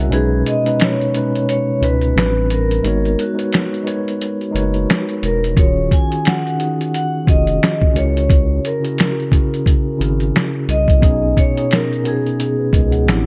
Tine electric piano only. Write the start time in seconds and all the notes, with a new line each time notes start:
Already playing: C#3 C#4 E4 F#4 G#4 A#4 C#5 D#5 E5 F#5 G#5 A#5
0.09 B2 G#3 C#4 D#4
0.13 B4
0.63 B2 G#3 C#4 D#4
0.68 B4
1.12 B2 G#3 C#4 D#4
1.17 B4
1.79 B2 G#3 C#4 D#4
1.84 B4
2.13 A2 G3 C4 D4
2.18 B4
2.83 G#3 B3 D#4 F#4 A#4
2.87 C#5
3.34 G#3 D#4 F#4 A#4 B4
3.38 C#5
3.83 G#3 D#4 F#4 A#4 B4
3.88 C#5
4.51 G#3 D#4 F#4 A#4 B4
4.56 C#5
5.54 D#3 C#4 F4 F#4
5.59 G#4
6.06 D#3 C#4 F4 F#4
6.11 G#4
6.56 D#3 C#4 D#4 F#4
6.60 G#4
7.24 D#3 C#4 F4 F#4
7.29 G#4
7.92 C#3 C#4 E4 F#4 G#4
7.96 A#4
8.80 C#3 C#4 E4 F#4 G#4
8.85 A#4
9.30 C#3 C#4 E4 F#4 G#4
9.35 A#4
9.97 C#3 C#4 E4 F#4 G#4
10.02 A#4
10.99 B2 B3 C#4 D#4
11.04 G#4
11.53 B2 B3 C#4 D#4
11.58 G#4
12.03 B2 B3 C#4 D#4
12.07 G#4
12.58 F#4 B4
12.73 A#4 D#5
12.92 C#5 F#5
13.05 A2 E3 B3 C4 D4
13.10 G4